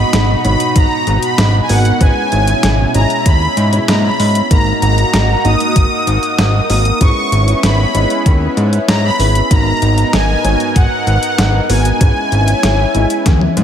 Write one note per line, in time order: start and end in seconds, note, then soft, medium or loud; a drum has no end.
0.00 0.41 G#2 medium
0.00 4.47 B2 medium
0.00 0.41 A#3 loud
0.00 0.41 B3 medium
0.00 0.41 D#4 medium
0.00 1.98 D#4 medium
0.00 0.41 F#4 medium
0.00 1.98 F#4 medium
0.00 0.41 B5 loud
0.13 0.35 G#1 medium
0.13 snare loud
0.13 closed hi-hat medium
0.44 0.56 G#1 medium
0.44 1.66 G#2 medium
0.44 1.66 B3 medium
0.44 1.66 D#4 medium
0.44 1.66 F#4 medium
0.44 1.66 C#5 medium
0.44 0.77 B5 loud
0.44 closed hi-hat medium
0.60 closed hi-hat medium
0.76 0.87 G#1 loud
0.76 1.20 A#5 loud
0.76 kick loud
0.76 closed hi-hat medium
1.07 1.18 G#1 loud
1.07 closed hi-hat medium
1.23 1.64 B5 loud
1.23 closed hi-hat medium
1.38 1.60 G#1 loud
1.38 snare loud
1.38 closed hi-hat loud
1.63 1.70 G#5 medium
1.69 1.92 G#1 medium
1.69 1.97 G#2 medium
1.69 1.97 B3 medium
1.69 1.97 D#4 medium
1.69 1.97 F#4 medium
1.69 1.97 A#4 loud
1.69 1.99 F#5 loud
1.69 open hi-hat medium
1.85 closed hi-hat medium
2.01 2.12 G#1 loud
2.01 2.91 G#3 medium
2.01 4.48 C#4 medium
2.01 2.91 C#4 medium
2.01 4.48 E4 medium
2.01 2.91 E4 medium
2.01 2.91 G#4 medium
2.01 2.91 B4 loud
2.01 2.91 G#5 loud
2.01 kick loud
2.01 closed hi-hat medium
2.32 2.54 G#1 medium
2.32 closed hi-hat medium
2.47 closed hi-hat medium
2.63 2.85 G#1 medium
2.63 snare loud
2.63 closed hi-hat medium
2.95 3.06 G#1 medium
2.95 3.70 G#3 medium
2.95 3.70 C#4 medium
2.95 3.70 E4 medium
2.95 3.70 G#4 medium
2.95 3.70 D#5 medium
2.95 3.24 A#5 loud
2.95 closed hi-hat medium
3.10 closed hi-hat medium
3.26 3.48 D#2 medium
3.26 3.90 B5 loud
3.26 kick loud
3.26 closed hi-hat medium
3.57 3.79 G#2 loud
3.57 closed hi-hat medium
3.73 3.85 G#3 medium
3.73 3.85 C#4 medium
3.73 3.85 E4 medium
3.73 3.85 G#4 medium
3.73 3.85 C#5 medium
3.73 closed hi-hat medium
3.88 4.10 G#2 loud
3.88 4.47 G#3 medium
3.88 4.47 A#3 medium
3.88 4.47 C#4 medium
3.88 4.47 G#4 medium
3.88 3.95 A#5 loud
3.88 snare loud
3.88 closed hi-hat medium
4.04 4.48 B5 loud
4.20 4.42 G#2 medium
4.20 open hi-hat medium
4.35 closed hi-hat medium
4.51 4.73 G#1 loud
4.51 5.41 G#2 medium
4.51 5.41 A#3 medium
4.51 6.98 A#3 medium
4.51 5.41 D#4 medium
4.51 6.98 D#4 medium
4.51 5.41 F#4 medium
4.51 6.98 F#4 loud
4.51 5.41 A#4 medium
4.51 4.81 A#5 loud
4.51 kick loud
4.51 closed hi-hat medium
4.82 5.04 G#1 medium
4.82 5.46 A#5 loud
4.82 closed hi-hat medium
4.98 closed hi-hat medium
5.13 5.35 G#1 medium
5.13 snare loud
5.13 closed hi-hat medium
5.45 5.56 G#1 medium
5.45 6.66 G#2 medium
5.45 6.66 A#3 medium
5.45 6.66 D#4 medium
5.45 6.66 F#4 medium
5.45 6.66 D#5 medium
5.45 6.66 D#6 loud
5.45 closed hi-hat medium
5.60 closed hi-hat medium
5.76 5.87 G#1 loud
5.76 kick loud
5.76 closed hi-hat medium
6.07 6.18 G#1 loud
6.07 closed hi-hat medium
6.23 closed hi-hat medium
6.38 6.60 G#1 loud
6.38 snare loud
6.38 closed hi-hat medium
6.70 6.92 G#1 medium
6.70 6.97 A#3 loud
6.70 6.97 D#4 medium
6.70 6.97 F#4 medium
6.70 6.97 A#4 loud
6.70 6.99 D#6 loud
6.70 open hi-hat medium
6.85 closed hi-hat medium
7.01 7.12 G#1 loud
7.01 7.91 G#3 medium
7.01 9.49 B3 medium
7.01 7.91 C#4 medium
7.01 9.49 C#4 medium
7.01 7.91 E4 medium
7.01 9.49 E4 medium
7.01 7.91 G#4 medium
7.01 7.91 B4 medium
7.01 7.65 C#6 loud
7.01 kick loud
7.01 closed hi-hat medium
7.32 7.54 G#1 medium
7.32 closed hi-hat medium
7.48 closed hi-hat medium
7.63 7.85 G#1 medium
7.63 8.53 B5 medium
7.63 snare loud
7.63 closed hi-hat medium
7.95 8.06 G#1 medium
7.95 9.16 G#3 medium
7.95 9.16 C#4 medium
7.95 9.16 E4 medium
7.95 9.16 G#4 medium
7.95 9.16 D#5 medium
7.95 closed hi-hat medium
8.10 closed hi-hat medium
8.26 8.48 D#2 medium
8.26 kick loud
8.26 closed hi-hat medium
8.57 8.79 G#2 medium
8.57 closed hi-hat medium
8.73 closed hi-hat medium
8.88 9.10 G#2 medium
8.88 9.04 A#5 loud
8.88 snare loud
8.88 closed hi-hat medium
9.04 9.52 B5 loud
9.19 9.41 G#1 medium
9.19 9.47 C#4 medium
9.19 9.47 E4 medium
9.19 9.47 G#4 medium
9.19 9.47 B4 loud
9.19 open hi-hat medium
9.35 closed hi-hat medium
9.51 9.73 G#1 loud
9.51 10.41 G#2 medium
9.51 10.41 B3 medium
9.51 13.64 B3 medium
9.51 10.41 D#4 medium
9.51 11.98 D#4 loud
9.51 10.41 F#4 medium
9.51 10.41 A#4 loud
9.51 11.98 A#4 medium
9.51 10.15 A#5 loud
9.51 kick loud
9.51 closed hi-hat medium
9.82 10.04 G#1 medium
9.82 closed hi-hat medium
9.98 closed hi-hat medium
10.13 10.35 G#1 medium
10.13 10.78 G#5 loud
10.13 snare loud
10.13 closed hi-hat medium
10.44 10.55 G#1 medium
10.44 11.66 G#2 medium
10.44 11.66 B3 medium
10.44 11.66 D#4 medium
10.44 11.66 F#4 medium
10.44 11.66 C#5 medium
10.44 closed hi-hat medium
10.60 closed hi-hat medium
10.76 10.87 G#1 loud
10.76 11.66 F#5 loud
10.76 kick loud
10.76 closed hi-hat medium
11.07 11.18 G#1 loud
11.07 closed hi-hat medium
11.23 closed hi-hat medium
11.38 11.60 G#1 loud
11.38 snare loud
11.38 closed hi-hat medium
11.69 11.91 G#1 medium
11.69 11.97 G#2 loud
11.69 11.97 B3 medium
11.69 11.97 D#4 medium
11.69 11.97 F#4 medium
11.69 11.97 A#4 loud
11.69 13.64 G#5 loud
11.69 open hi-hat medium
11.85 closed hi-hat medium
12.01 12.12 G#1 loud
12.01 12.91 G#3 medium
12.01 12.91 C#4 medium
12.01 13.64 C#4 medium
12.01 12.91 E4 medium
12.01 13.64 E4 loud
12.01 12.91 G#4 medium
12.01 12.91 B4 loud
12.01 kick loud
12.01 closed hi-hat medium
12.32 12.54 G#1 medium
12.32 closed hi-hat medium
12.48 closed hi-hat medium
12.63 12.85 G#1 medium
12.63 snare loud
12.63 closed hi-hat medium
12.94 13.05 G#1 medium
12.94 13.64 G#3 medium
12.94 13.64 C#4 medium
12.94 13.64 E4 medium
12.94 13.64 G#4 medium
12.94 13.64 D#5 medium
12.94 closed hi-hat medium
13.10 closed hi-hat medium
13.26 13.48 D#2 medium
13.26 kick loud
13.26 snare medium
13.26 closed hi-hat medium
13.26 high tom medium
13.41 high tom medium
13.57 13.64 G#2 loud
13.57 closed hi-hat medium
13.57 high tom medium